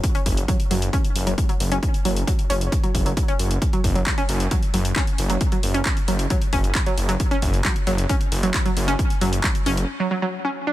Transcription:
0.04 kick loud
0.04 closed hi-hat medium
0.15 0.20 C#4 loud
0.15 closed hi-hat medium
0.26 0.44 F#1 loud
0.26 kick medium
0.26 open hi-hat loud
0.37 closed hi-hat medium
0.48 0.56 F#3 medium
0.48 kick loud
0.48 closed hi-hat medium
0.60 closed hi-hat medium
0.71 0.89 F#1 medium
0.71 0.76 F#3 medium
0.71 open hi-hat loud
0.82 closed hi-hat medium
0.93 0.98 C#4 loud
0.93 kick loud
0.93 closed hi-hat medium
1.05 closed hi-hat medium
1.16 1.34 F#1 medium
1.16 open hi-hat loud
1.27 1.34 F#3 medium
1.27 closed hi-hat medium
1.38 kick loud
1.38 closed hi-hat medium
1.49 1.54 F#3 medium
1.49 closed hi-hat medium
1.60 1.79 F#1 medium
1.60 open hi-hat loud
1.72 1.76 C#4 loud
1.72 closed hi-hat medium
1.83 kick loud
1.83 closed hi-hat medium
1.94 closed hi-hat medium
2.05 2.23 F#1 loud
2.05 2.12 F#3 medium
2.05 open hi-hat loud
2.16 closed hi-hat soft
2.27 2.32 F#3 medium
2.27 kick loud
2.27 closed hi-hat medium
2.39 closed hi-hat medium
2.50 2.68 F#1 loud
2.50 2.55 C#4 loud
2.50 open hi-hat loud
2.61 closed hi-hat medium
2.72 kick loud
2.72 closed hi-hat medium
2.83 2.91 F#3 medium
2.83 closed hi-hat medium
2.95 3.13 F#1 medium
2.95 kick medium
2.95 open hi-hat loud
3.06 3.11 F#3 medium
3.06 closed hi-hat soft
3.17 kick loud
3.17 closed hi-hat medium
3.28 3.33 C#4 loud
3.28 closed hi-hat medium
3.39 3.58 F#1 medium
3.39 open hi-hat loud
3.51 closed hi-hat medium
3.62 kick loud
3.62 closed hi-hat medium
3.73 3.80 F#3 medium
3.73 closed hi-hat medium
3.84 4.02 F#1 loud
3.84 kick medium
3.84 open hi-hat loud
3.95 4.00 F#3 medium
3.95 closed hi-hat soft
4.07 kick loud
4.07 clap loud
4.07 closed hi-hat medium
4.18 4.23 C#4 loud
4.18 closed hi-hat soft
4.29 4.47 F#1 loud
4.29 open hi-hat loud
4.40 closed hi-hat soft
4.51 4.59 F#3 medium
4.51 kick loud
4.51 closed hi-hat medium
4.63 closed hi-hat soft
4.74 4.92 F#1 medium
4.74 4.79 F#3 medium
4.74 open hi-hat loud
4.85 closed hi-hat medium
4.96 5.01 C#4 loud
4.96 kick loud
4.96 clap loud
4.96 closed hi-hat medium
5.07 closed hi-hat medium
5.18 5.37 F#1 medium
5.18 open hi-hat loud
5.30 5.37 F#3 medium
5.30 closed hi-hat soft
5.41 kick loud
5.41 closed hi-hat medium
5.52 5.57 F#3 medium
5.52 closed hi-hat medium
5.63 5.82 F#1 medium
5.63 open hi-hat loud
5.74 5.79 C#4 loud
5.74 closed hi-hat soft
5.85 kick loud
5.85 clap loud
5.85 closed hi-hat medium
5.97 closed hi-hat soft
6.08 6.26 F#1 medium
6.08 6.15 F#3 medium
6.08 open hi-hat loud
6.19 closed hi-hat soft
6.30 6.35 F#3 medium
6.30 kick loud
6.30 closed hi-hat medium
6.42 closed hi-hat soft
6.53 6.71 F#1 medium
6.53 6.58 C#4 loud
6.53 kick medium
6.53 open hi-hat loud
6.64 closed hi-hat soft
6.75 kick loud
6.75 clap loud
6.75 closed hi-hat medium
6.86 6.94 F#3 medium
6.86 closed hi-hat soft
6.98 7.16 F#1 medium
6.98 open hi-hat loud
7.09 7.14 F#3 medium
7.09 closed hi-hat soft
7.20 kick loud
7.20 closed hi-hat medium
7.31 7.36 C#4 loud
7.31 closed hi-hat medium
7.42 7.61 F#1 medium
7.42 kick medium
7.42 open hi-hat loud
7.54 closed hi-hat medium
7.65 7.72 F#3 medium
7.65 kick loud
7.65 clap loud
7.65 closed hi-hat medium
7.76 closed hi-hat soft
7.87 8.05 F#1 medium
7.87 7.92 F#3 medium
7.87 open hi-hat loud
7.98 closed hi-hat medium
8.09 8.14 C#4 loud
8.09 kick loud
8.09 closed hi-hat medium
8.21 closed hi-hat soft
8.32 8.50 F#1 medium
8.32 open hi-hat loud
8.43 8.50 F#3 medium
8.43 closed hi-hat medium
8.54 kick loud
8.54 clap loud
8.54 closed hi-hat medium
8.65 8.70 F#3 medium
8.65 closed hi-hat medium
8.77 8.95 F#1 medium
8.77 open hi-hat loud
8.88 8.93 C#4 loud
8.88 closed hi-hat medium
8.99 kick loud
8.99 closed hi-hat medium
9.10 closed hi-hat medium
9.21 9.40 F#1 loud
9.21 9.29 F#3 medium
9.21 open hi-hat loud
9.33 closed hi-hat medium
9.44 9.49 F#3 medium
9.44 kick loud
9.44 clap loud
9.44 closed hi-hat medium
9.55 closed hi-hat medium
9.66 9.84 F#1 loud
9.66 9.71 C#4 loud
9.66 open hi-hat loud
9.77 closed hi-hat medium
10.00 10.07 F#3 medium
10.11 10.14 F#3 medium
10.22 10.25 F#3 medium
10.45 10.50 C#4 medium
10.67 10.73 D4 medium

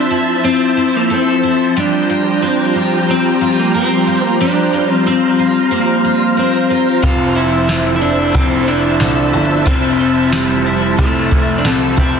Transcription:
0.00 12.20 F3 medium
0.00 0.44 C4 medium
0.00 1.09 A4 medium
0.00 12.20 C5 medium
0.00 1.73 E5 medium
0.00 1.73 A5 medium
0.10 0.76 E4 medium
0.44 2.42 C4 medium
0.44 0.95 C4 medium
0.77 1.42 E4 medium
0.96 1.12 A#3 medium
1.10 1.74 C4 medium
1.10 1.83 A4 medium
1.43 1.83 E4 medium
1.76 4.39 G3 loud
1.76 7.00 G3 medium
1.76 2.73 D4 loud
1.76 4.38 G5 medium
1.76 7.00 A#5 medium
2.10 2.75 F4 medium
2.42 3.08 C4 medium
2.75 3.41 F4 medium
3.08 5.06 C4 medium
3.08 3.60 C4 loud
3.41 4.07 F4 medium
3.59 3.75 A#3 medium
3.74 4.27 C4 loud
3.74 6.36 A#4 medium
4.07 4.73 F4 medium
4.27 4.41 A#3 loud
4.40 7.04 G3 medium
4.40 4.92 D4 loud
4.40 7.01 F5 medium
4.73 5.38 F4 medium
4.92 5.07 C4 loud
5.06 5.70 C4 medium
5.06 5.72 C4 loud
5.39 6.04 F4 medium
5.71 6.40 A#3 medium
5.71 7.02 C4 medium
6.04 6.70 F4 medium
6.37 7.06 C4 medium
6.37 7.10 A#4 medium
6.70 7.34 F4 medium
7.02 8.31 F1 loud
7.02 7.36 F3 medium
7.02 7.37 A3 medium
7.02 7.67 C4 medium
7.02 7.37 C4 medium
7.02 7.36 F4 loud
7.02 12.20 E5 medium
7.02 12.20 A5 loud
7.02 kick loud
7.02 closed hi-hat medium
7.06 7.35 A4 medium
7.35 8.00 E4 medium
7.35 7.95 E4 medium
7.35 8.36 E4 medium
7.35 8.35 A4 medium
7.40 8.36 C4 soft
7.68 8.34 C4 medium
7.68 snare loud
7.68 closed hi-hat medium
7.68 tambourine medium
7.96 8.01 E4 medium
8.01 8.36 D4 medium
8.01 8.66 E4 medium
8.33 8.98 F1 medium
8.33 9.66 A3 medium
8.33 9.66 C4 medium
8.33 8.67 C4 medium
8.33 kick loud
8.33 closed hi-hat medium
8.37 9.68 C4 medium
8.37 9.68 E4 medium
8.42 9.68 A4 medium
8.67 9.70 D4 loud
8.67 9.32 E4 medium
9.00 9.32 C2 medium
9.00 11.63 A4 medium
9.00 snare loud
9.00 closed hi-hat medium
9.00 tambourine medium
9.33 9.65 G1 medium
9.33 9.99 E4 medium
9.66 10.95 F1 loud
9.66 9.99 F3 medium
9.66 10.00 A3 medium
9.66 10.32 C4 loud
9.66 10.01 C4 medium
9.66 10.36 C4 loud
9.66 10.01 E4 medium
9.66 9.98 A4 medium
9.66 kick loud
9.66 closed hi-hat medium
10.00 10.65 E4 medium
10.00 11.00 E4 medium
10.00 10.99 A4 medium
10.04 11.00 C4 soft
10.32 11.01 G3 medium
10.32 10.98 C4 medium
10.32 snare loud
10.32 closed hi-hat medium
10.32 tambourine medium
10.66 11.30 E4 medium
10.97 11.61 F1 loud
10.97 12.20 A3 medium
10.97 11.60 A3 medium
10.97 12.20 C4 medium
10.97 kick medium
10.97 closed hi-hat medium
11.04 12.20 E4 medium
11.04 12.20 A4 medium
11.31 11.96 E4 medium
11.31 kick loud
11.58 11.65 D4 medium
11.64 11.96 C2 loud
11.64 11.98 C4 medium
11.64 12.20 A4 medium
11.64 snare loud
11.64 closed hi-hat medium
11.64 tambourine medium
11.97 12.20 F1 loud
11.97 12.20 C4 medium
11.97 12.20 E4 medium
11.97 kick medium

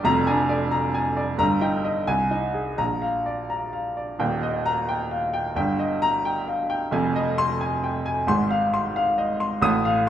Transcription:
0.04 1.34 F1 medium
0.04 1.35 F2 medium
0.04 0.40 A#5 loud
0.27 0.63 D4 medium
0.27 0.63 G#5 medium
0.49 0.85 D5 medium
0.71 1.07 A#5 medium
0.94 1.30 G#5 medium
1.17 1.39 D5 medium
1.38 2.05 G1 medium
1.38 2.05 G2 medium
1.38 1.75 A#5 medium
1.61 1.98 D#4 medium
1.61 1.98 G5 medium
1.84 2.07 D#5 medium
2.07 2.76 C2 medium
2.07 2.45 G#5 medium
2.31 2.69 D#4 medium
2.31 2.69 D#5 medium
2.54 2.78 G#4 medium
2.78 4.16 A#1 medium
2.78 3.16 A#5 medium
3.02 3.40 F5 medium
3.26 3.64 D5 medium
3.50 3.87 A#5 medium
3.73 4.11 F5 soft
3.97 4.20 D5 soft
4.19 5.52 D#1 medium
4.19 5.52 D#2 medium
4.19 4.56 G5 medium
4.43 4.79 D#5 medium
4.66 5.02 A#5 medium
4.89 5.25 G5 medium
5.11 5.34 F5 medium
5.33 5.55 G5 medium
5.56 6.88 G1 medium
5.56 6.88 G2 medium
5.56 5.93 G5 medium
5.79 6.16 D#5 medium
6.02 6.38 A#5 loud
6.25 6.61 G5 medium
6.48 6.70 F5 medium
6.70 6.92 G5 medium
6.91 8.23 F1 medium
6.91 8.24 F2 medium
6.91 7.29 G#5 medium
7.16 7.52 D#5 medium
7.38 7.74 C6 loud
7.61 7.97 G#5 medium
7.84 8.06 G5 medium
8.06 8.28 G#5 medium
8.27 9.58 G#1 medium
8.27 9.58 G#2 medium
8.27 8.64 C6 medium
8.51 8.87 F5 medium
8.74 9.09 C6 medium
8.96 9.32 F5 medium
9.18 9.40 D#5 medium
9.40 9.62 C6 medium
9.62 10.09 A1 medium
9.62 10.09 A2 medium
9.62 9.98 D#6 loud
9.85 10.09 F5 medium

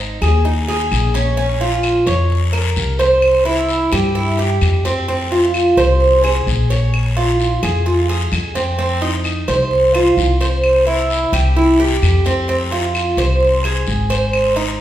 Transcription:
0.00 0.15 G#1 medium
0.00 0.21 D#4 medium
0.22 0.87 D#2 medium
0.22 0.44 G#4 medium
0.22 short guiro medium
0.22 claves medium
0.45 0.67 D#4 medium
0.45 long guiro medium
0.68 1.13 G#4 medium
0.91 2.01 A#1 medium
0.91 short guiro medium
0.91 claves medium
1.14 1.36 C#4 medium
1.14 short guiro medium
1.37 1.60 C#4 medium
1.37 long guiro medium
1.61 2.06 F4 medium
1.83 short guiro medium
1.83 claves medium
2.07 2.72 F2 medium
2.07 2.52 C#5 medium
2.07 short guiro medium
2.30 long guiro medium
2.53 2.98 A#4 medium
2.53 claves medium
2.76 3.86 C2 medium
2.76 short guiro medium
2.99 3.44 C5 medium
2.99 short guiro medium
3.22 long guiro medium
3.22 claves medium
3.45 3.91 E4 medium
3.69 short guiro medium
3.92 4.58 G2 medium
3.92 4.15 G4 medium
3.92 short guiro medium
3.92 claves medium
4.15 4.38 E4 medium
4.15 long guiro medium
4.39 4.84 G4 medium
4.61 5.71 F2 medium
4.61 short guiro medium
4.61 claves medium
4.85 5.07 C4 medium
4.85 short guiro medium
5.08 5.31 C4 medium
5.08 long guiro medium
5.32 5.76 F4 medium
5.54 short guiro medium
5.54 claves medium
5.77 6.43 C2 medium
5.77 6.22 C5 medium
5.77 short guiro medium
6.00 long guiro medium
6.24 6.69 G#4 medium
6.24 claves medium
6.47 7.56 A#1 medium
6.47 short guiro medium
6.70 7.15 C#5 medium
6.70 short guiro medium
6.94 long guiro medium
6.94 claves medium
7.17 7.61 F4 medium
7.40 short guiro medium
7.63 8.28 F2 medium
7.63 7.85 G#4 medium
7.63 short guiro medium
7.63 claves medium
7.86 8.08 F4 medium
7.86 long guiro medium
8.09 8.54 G#4 medium
8.32 9.41 F2 medium
8.32 short guiro medium
8.32 claves medium
8.55 8.77 C4 medium
8.55 short guiro medium
8.79 9.01 C4 medium
8.79 long guiro medium
9.02 9.46 D#4 medium
9.24 short guiro medium
9.24 claves medium
9.48 10.13 C2 medium
9.48 9.93 C5 medium
9.48 short guiro medium
9.71 long guiro medium
9.94 10.39 F4 medium
9.94 claves medium
10.17 11.26 C2 medium
10.17 short guiro medium
10.41 10.85 C5 medium
10.41 short guiro medium
10.64 long guiro medium
10.64 claves medium
10.87 11.31 E4 medium
11.10 short guiro medium
11.32 11.98 C2 medium
11.32 11.55 G4 medium
11.32 short guiro medium
11.32 claves medium
11.56 11.79 E4 medium
11.56 long guiro medium
11.80 12.24 G4 medium
12.02 13.11 F2 medium
12.02 short guiro medium
12.02 claves medium
12.25 12.48 C4 medium
12.25 short guiro medium
12.48 12.71 C4 medium
12.48 long guiro medium
12.72 13.17 F4 medium
12.95 short guiro medium
12.95 claves medium
13.17 13.83 C2 medium
13.17 13.63 C5 medium
13.17 short guiro medium
13.40 long guiro medium
13.64 14.09 G#4 medium
13.64 claves medium
13.87 14.81 G#1 medium
13.87 short guiro medium
14.10 14.55 C5 medium
14.10 short guiro medium
14.33 long guiro medium
14.33 claves medium
14.56 14.81 D#4 medium

